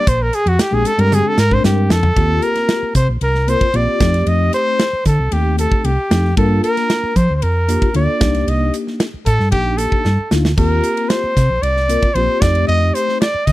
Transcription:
0.07 fingered electric bass A#1, trumpet C5, kick, hi-hat pedal, ride
0.22 trumpet A#4
0.33 trumpet G#4, hi-hat pedal, ride
0.46 fingered electric bass F2, trumpet F#4, ride
0.59 trumpet G4, muted fingered electric bass stroke, snare, hi-hat pedal, ride
0.71 fingered electric bass A#1, tine electric piano G#3 C4 D4 G4, trumpet G#4
0.85 trumpet A4, hi-hat pedal, ride
0.97 fingered electric bass G2, tine electric piano G#3 C4 D4 G4, trumpet A#4, ride
1.12 trumpet G#4, hi-hat pedal, high tom
1.28 trumpet A4
1.38 fingered electric bass G#2, trumpet A#4, snare, hi-hat pedal
1.50 tine electric piano G#3 C4 D4 A#4, trumpet C5, kick
1.64 fingered electric bass G2, trumpet G4, snare, hi-hat pedal
1.90 fingered electric bass F2, trumpet A4, snare, hi-hat pedal
2.03 floor tom
2.16 fingered electric bass D#2, tine electric piano A#3 C4 F4 G4, kick, ride
2.42 trumpet A#4, hi-hat pedal, ride
2.55 snare, ride
2.69 snare, ride
2.83 muted fingered electric bass stroke
2.95 fingered electric bass C3, trumpet C5, kick, hi-hat pedal, ride
3.09 fingered electric bass A#1
3.21 fingered electric bass C2, trumpet A#4, ride
3.35 snare
3.47 tine electric piano A#3 C4 F4 A#4, trumpet C5, hi-hat pedal, ride
3.61 muted fingered electric bass stroke, kick, ride
3.73 fingered electric bass A#1, tine electric piano A#3 C4 F4 G4, trumpet D5, ride
3.87 muted fingered electric bass stroke
4.00 fingered electric bass F2, tine electric piano A3 C4 D#4 G4, kick, snare, hi-hat pedal, ride
4.14 snare, ride
4.27 fingered electric bass F2, trumpet D#5, ride
4.53 trumpet C5, hi-hat pedal, ride
4.79 snare, ride
4.93 muted fingered electric bass stroke
5.05 fingered electric bass D3, trumpet A4, kick, snare, hi-hat pedal, ride
5.19 fingered electric bass C2
5.31 fingered electric bass D#2, tine electric piano A3 C4 D#4 G4, trumpet G4, ride
5.58 trumpet A4, hi-hat pedal, ride
5.72 muted fingered electric bass stroke, kick
5.85 fingered electric bass C2, trumpet G4, ride
6.10 fingered electric bass F2, tine electric piano A3 C4 D#4 A4, snare, hi-hat pedal, ride
6.36 fingered electric bass G2, tine electric piano A#3 D4 F4 A#4, trumpet A4, kick, ride
6.64 trumpet A#4, hi-hat pedal, ride
6.77 snare, ride
6.90 snare, ride
7.04 muted fingered electric bass stroke
7.16 fingered electric bass F3, trumpet C5, kick, hi-hat pedal, ride
7.30 fingered electric bass D2
7.36 trumpet C5
7.42 fingered electric bass F2, trumpet A#4, ride
7.68 tine electric piano A#3 D4 F4 G4, hi-hat pedal, ride
7.82 muted fingered electric bass stroke, kick, ride
7.94 fingered electric bass D2, tine electric piano A#3 D4 F4 A4, trumpet D5, ride
8.19 fingered electric bass C2, tine electric piano A#3 D4 D#4 G4, kick, snare, hi-hat pedal, ride
8.35 snare, ride
8.47 fingered electric bass C2, trumpet D#5, ride
8.74 hi-hat pedal, ride
8.87 snare
9.00 snare, ride
9.14 muted fingered electric bass stroke
9.26 fingered electric bass A2, trumpet A4, kick, hi-hat pedal, ride
9.39 fingered electric bass G2, snare
9.51 fingered electric bass A#1, tine electric piano A#3 D4 D#4 G4, trumpet G4, kick, ride
9.77 trumpet A4, hi-hat pedal, ride
9.92 muted fingered electric bass stroke, kick
10.05 fingered electric bass G2, snare
10.19 muted fingered electric bass stroke
10.31 fingered electric bass D2, tine electric piano A#3 D4 D#4 F4, snare, hi-hat pedal
10.45 snare
10.57 fingered electric bass D#2, tine electric piano A#3 C4 F4 G4, trumpet A#4, kick, crash, ride
10.83 hi-hat pedal, ride
10.97 ride
11.09 trumpet C5, snare, ride
11.24 muted fingered electric bass stroke
11.37 fingered electric bass C3, kick, snare, hi-hat pedal, ride
11.49 fingered electric bass A#1
11.62 fingered electric bass C2, trumpet D5, ride
11.77 snare
11.88 tine electric piano A#3 C4 F4 A#4, hi-hat pedal, ride
12.02 muted fingered electric bass stroke, kick, ride
12.14 fingered electric bass A#1, tine electric piano A#3 C4 F4 G4, trumpet C5, ride
12.28 muted fingered electric bass stroke
12.41 fingered electric bass F2, tine electric piano A3 C4 D#4 G4, trumpet D5, kick, snare, hi-hat pedal, ride
12.55 ride
12.67 fingered electric bass F2, trumpet D#5, ride
12.94 trumpet C5, hi-hat pedal, ride
13.09 snare
13.21 trumpet D5, snare, ride
13.34 muted fingered electric bass stroke
13.46 fingered electric bass D3, trumpet D#5, kick, snare, hi-hat pedal, ride

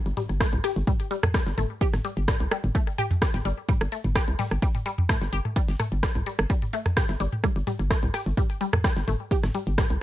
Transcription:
Already playing: impact
0.06 fm bass G1, closed hi-hat
0.17 synth arpeggio sound G3, closed hi-hat, high tom
0.29 fm bass G1, closed hi-hat
0.40 synth arpeggio sound A3, kick, cross-stick, snare, closed hi-hat
0.53 fm bass C2, closed hi-hat, high tom
0.64 synth arpeggio sound G4, cross-stick, closed hi-hat, open hi-hat
0.76 fm bass G1, closed hi-hat
0.87 synth arpeggio sound G3, kick, closed hi-hat, high tom
1.00 closed hi-hat
1.11 synth arpeggio sound G3, closed hi-hat
1.23 cross-stick, mid tom, high tom
1.34 synth arpeggio sound G3, kick, cross-stick, snare, closed hi-hat
1.47 fm bass G1, snare, closed hi-hat
1.58 fm bass G1, synth arpeggio sound A3, closed hi-hat, high tom
1.81 synth arpeggio sound G4, kick, closed hi-hat
1.93 fm bass G1, cross-stick, snare, closed hi-hat, high tom
2.05 synth arpeggio sound G3, closed hi-hat
2.17 fm bass G1, closed hi-hat
2.28 synth arpeggio sound G3, kick, cross-stick, snare, closed hi-hat, high tom
2.40 fm bass C2, closed hi-hat
2.51 synth arpeggio sound G3, cross-stick, closed hi-hat
2.64 fm bass G1, closed hi-hat, high tom
2.75 synth arpeggio sound A3, kick, closed hi-hat
2.87 closed hi-hat
2.98 synth arpeggio sound G4, closed hi-hat, high tom
3.11 closed hi-hat, mid tom
3.22 synth arpeggio sound G3, kick, cross-stick, snare, closed hi-hat
3.34 fm bass G1, snare, closed hi-hat, high tom
3.45 fm bass G1, synth arpeggio sound G3, closed hi-hat
3.69 synth arpeggio sound G3, kick, closed hi-hat, high tom
3.81 fm bass G1, cross-stick, closed hi-hat
3.92 synth arpeggio sound A3, closed hi-hat
4.04 fm bass G1, closed hi-hat, high tom
4.16 synth arpeggio sound G4, kick, cross-stick, snare, closed hi-hat
4.28 fm bass C2, closed hi-hat
4.39 synth arpeggio sound G3, closed hi-hat, open hi-hat, high tom
4.51 fm bass G1, cross-stick, closed hi-hat
4.62 synth arpeggio sound G3, kick, closed hi-hat
4.75 closed hi-hat, high tom
4.86 synth arpeggio sound G3, closed hi-hat
4.98 mid tom
5.09 synth arpeggio sound A3, kick, cross-stick, snare, closed hi-hat, high tom
5.22 fm bass G1, snare, closed hi-hat
5.33 fm bass G1, synth arpeggio sound G4, closed hi-hat
5.45 high tom
5.56 synth arpeggio sound G3, kick, closed hi-hat
5.68 fm bass G1, snare, closed hi-hat
5.80 synth arpeggio sound A3, cross-stick, closed hi-hat, high tom
5.92 fm bass G1, closed hi-hat
6.03 synth arpeggio sound G3, kick, cross-stick, snare, closed hi-hat
6.15 fm bass C2, closed hi-hat, high tom
6.26 synth arpeggio sound G3, closed hi-hat
6.39 fm bass G1, cross-stick, closed hi-hat
6.50 synth arpeggio sound G3, kick, closed hi-hat
6.62 closed hi-hat, high tom
6.73 synth arpeggio sound A3, closed hi-hat
6.86 cross-stick, closed hi-hat, mid tom
6.97 synth arpeggio sound G4, kick, cross-stick, snare, closed hi-hat, high tom
7.09 fm bass G1, snare, closed hi-hat
7.20 fm bass G1, synth arpeggio sound G3, closed hi-hat
7.33 high tom
7.44 synth arpeggio sound G3, kick, cross-stick, closed hi-hat
7.56 fm bass G1, closed hi-hat
7.67 synth arpeggio sound G3, closed hi-hat, high tom
7.79 fm bass G1, closed hi-hat
7.91 synth arpeggio sound A3, kick, cross-stick, snare, closed hi-hat
8.03 fm bass C2, closed hi-hat, high tom
8.14 synth arpeggio sound G4, cross-stick, closed hi-hat, open hi-hat
8.26 fm bass G1, closed hi-hat
8.37 synth arpeggio sound G3, kick, closed hi-hat, high tom
8.50 closed hi-hat
8.61 synth arpeggio sound G3, closed hi-hat
8.73 cross-stick, mid tom, high tom
8.84 synth arpeggio sound G3, kick, cross-stick, snare, closed hi-hat
8.97 fm bass G1, snare, closed hi-hat
9.08 fm bass G1, synth arpeggio sound A3, closed hi-hat, high tom
9.31 synth arpeggio sound G4, kick, closed hi-hat
9.43 fm bass G1, cross-stick, snare, closed hi-hat, high tom
9.55 synth arpeggio sound G3, closed hi-hat
9.67 fm bass G1, closed hi-hat
9.78 synth arpeggio sound G3, kick, cross-stick, snare, closed hi-hat, high tom
9.90 fm bass C2, closed hi-hat

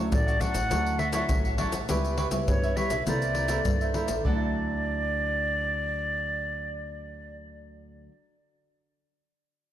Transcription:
Already playing: nylon-string guitar F#3 C#4 E4, cavaquinho A4 C#5 F#5
0.12 upright bass A1, nylon-string guitar A2, flute D5, pandeiro, maracas, surdo
0.27 cavaquinho A4 C#5 F#5, pandeiro, maracas
0.39 nylon-string guitar F#3 C#4 E4, cavaquinho D4 A4 C#5 F#5, flute F#5, pandeiro, maracas, surdo
0.54 upright bass A1, cavaquinho A4 C#5 F#5, pandeiro, maracas
0.70 upright bass D2, nylon-string guitar D3 F#3 C#4 E4, cavaquinho D4 A4 C#5 F#5, pandeiro, maracas, surdo
0.86 pandeiro, maracas
0.99 cavaquinho D4 A4 C#5 F#5, flute E5, pandeiro
1.13 nylon-string guitar F#3 C#4 E4, cavaquinho D4 A4 C#5 F#5, flute E5, pandeiro, maracas
1.29 upright bass A1, nylon-string guitar A2, pandeiro, maracas, surdo
1.45 cavaquinho A4 C#5 F#5, pandeiro, maracas
1.58 nylon-string guitar F#3 C#4 E4, cavaquinho D4 A4 C#5 F#5, pandeiro
1.72 upright bass A1, cavaquinho A4 F#5, pandeiro, maracas
1.88 upright bass C#2, nylon-string guitar C#3 G3 B3 E4, cavaquinho G4 B4 C#5 E5, pandeiro, maracas, surdo
2.04 pandeiro, maracas
2.17 cavaquinho G4 B4 C#5 E5, pandeiro
2.31 upright bass C#2, nylon-string guitar G3 B3 E4, cavaquinho B4 C#5 E5, pandeiro, maracas
2.48 upright bass G2, nylon-string guitar C#3, flute C#5, pandeiro, maracas, surdo
2.63 cavaquinho B4 C#5 E5, pandeiro, maracas
2.76 nylon-string guitar G3 B3 E4, cavaquinho G4 B4 C#5 E5, flute E5, pandeiro
2.90 upright bass B1, cavaquinho B4 C#5 E5, pandeiro, maracas
3.07 upright bass C2, nylon-string guitar C3 A#3 E4 A4, cavaquinho E4 A#4 C5 E5, flute D5, pandeiro, maracas, surdo
3.22 pandeiro, maracas
3.35 cavaquinho E4 A#4 C5 E5, pandeiro
3.48 nylon-string guitar A#3 E4 A4, cavaquinho E4 A#4 C5 E5, pandeiro, maracas
3.65 nylon-string guitar G2, upright bass G2, pandeiro, maracas, surdo
3.81 cavaquinho A#4 C5 E5, pandeiro, maracas
3.94 nylon-string guitar A#3 E4 A4, cavaquinho E4 A#4 C5 E5, pandeiro
4.08 upright bass A1, cavaquinho A#4 E5, pandeiro, maracas
4.20 nylon-string guitar D3
4.25 upright bass D2, nylon-string guitar F#3, cavaquinho D4 A4 F#5, flute D5, surdo
4.35 nylon-string guitar E4

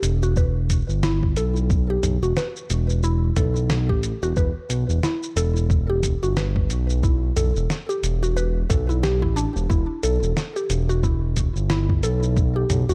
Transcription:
0.03 analog synth bass E1, closed hi-hat, shaker
0.23 synth pluck F#4, shaker
0.36 synth pluck B4, kick, shaker
0.70 kick, closed hi-hat, shaker
0.89 analog synth bass G1, shaker
1.03 synth pluck E4, snare, shaker
1.23 kick
1.36 analog synth bass B1, synth pluck A4, closed hi-hat, shaker
1.56 shaker
1.70 kick, shaker
1.90 synth pluck G4
2.03 analog synth bass B1, closed hi-hat, mid tom, shaker
2.22 analog synth bass E1, synth pluck F#4, shaker
2.37 synth pluck B4, snare, shaker
2.56 shaker
2.70 analog synth bass E1, closed hi-hat, shaker
2.90 shaker
3.03 synth pluck E4, shaker
3.36 analog synth bass B1, synth pluck A4, kick, closed hi-hat, mid tom, shaker
3.56 shaker
3.70 snare, shaker
3.89 analog synth bass A1, synth pluck G4, kick
4.03 closed hi-hat, shaker
4.22 analog synth bass E1, synth pluck F#4, shaker
4.37 analog synth bass E1, synth pluck B4, kick, shaker
4.69 analog synth bass B1, closed hi-hat, shaker
4.89 analog synth bass E1, shaker
5.03 synth pluck E4, snare, shaker
5.23 shaker
5.36 analog synth bass E1, synth pluck A4, closed hi-hat, shaker
5.56 shaker
5.70 kick, shaker
5.90 synth pluck G4
6.03 kick, closed hi-hat, shaker
6.22 analog synth bass G1, synth pluck F#4, shaker
6.37 synth pluck B4, snare, shaker
6.56 kick
6.70 analog synth bass B1, closed hi-hat, shaker
6.90 shaker
7.03 synth pluck E4, kick, shaker
7.36 analog synth bass B1, synth pluck A4, closed hi-hat, mid tom, shaker
7.56 analog synth bass E1, shaker
7.70 snare, shaker
7.89 synth pluck G4, shaker
8.03 analog synth bass E1, closed hi-hat, shaker
8.23 synth pluck F#4, shaker
8.37 synth pluck B4, shaker
8.70 analog synth bass B1, synth pluck A4, kick, closed hi-hat, mid tom, shaker
8.89 synth pluck E4, shaker
9.03 synth pluck G4, snare, shaker
9.22 analog synth bass A1, synth pluck E4, kick
9.36 synth pluck D4, closed hi-hat, shaker
9.56 analog synth bass E1, shaker
9.70 analog synth bass E1, synth pluck E4, kick, shaker
10.03 analog synth bass B1, synth pluck A4, closed hi-hat, shaker
10.22 analog synth bass E1, shaker
10.37 snare, shaker
10.56 synth pluck G4, shaker
10.70 analog synth bass E1, closed hi-hat, shaker
10.89 synth pluck F#4, shaker
11.03 synth pluck E4, kick, shaker
11.37 kick, closed hi-hat, shaker
11.56 analog synth bass G1, shaker
11.70 synth pluck E4, snare, shaker
11.89 kick
12.03 analog synth bass B1, synth pluck A4, closed hi-hat, shaker
12.23 shaker
12.37 kick, shaker
12.56 synth pluck G4
12.70 analog synth bass B1, closed hi-hat, mid tom, shaker
12.89 analog synth bass E1, synth pluck F#4, shaker

